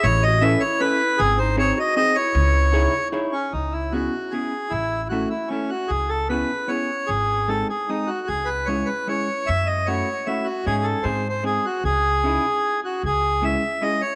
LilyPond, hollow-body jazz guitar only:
\new Staff \with { instrumentName = "Hollow-body jazz guitar" } { \time 3/4 \key cis \minor \tempo 4 = 152 r4 <cis' e' a' b'>8 r8 <cis' e' a' b'>8 r8 | r4 <bis dis' gis' bis'>8 r8 <bis dis' gis' bis'>8 r8 | r4 <dis' e' gis' cis''>8 r8 <dis' e' gis' cis''>8 r8 | r4 <b cis' e' gis'>8 r8 <b cis' e' gis'>8 r8 |
r4 <a cis' e' a'>8 r8 <a cis' e' a'>8 r8 | r4 <b cis' e' gis'>8 r8 <b cis' e' gis'>8 r8 | r4 <gis bis dis' gis'>8 r8 <gis bis dis' gis'>8 r8 | r4 <gis cis' e' gis'>8 r8 <gis cis' e' gis'>8 r8 |
r4 <a cis' e' fis'>8 r8 <a cis' e' fis'>8 r8 | <gis cis' dis' gis'>4 <gis bis dis' gis'>8 r8 <gis bis dis' gis'>8 r8 | r4 <cis' dis' e' gis'>8 r4. | r4 <gis cis' e' gis'>8 r8 <gis cis' e' gis'>8 r8 | }